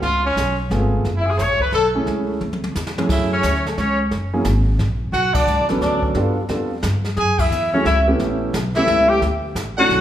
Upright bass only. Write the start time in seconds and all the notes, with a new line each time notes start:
0.02 C#2
0.36 B1
0.70 G#1
1.04 F#1
1.39 A1
1.60 muted upright bass stroke
1.72 B1
2.06 C#2
2.41 D2
2.76 E2
3.09 F#2
3.43 D2
3.78 C#2
4.11 F#1
4.45 G#1
4.79 A#1
5.12 B1
5.47 C#2
5.59 B1
5.70 A1
5.81 D2
6.15 G2
6.49 F2
6.83 G2
7.17 F#2
7.51 E2
7.85 C#2
8.20 A1
8.53 B1
8.87 C#2
9.21 D2
9.55 A1
9.89 B1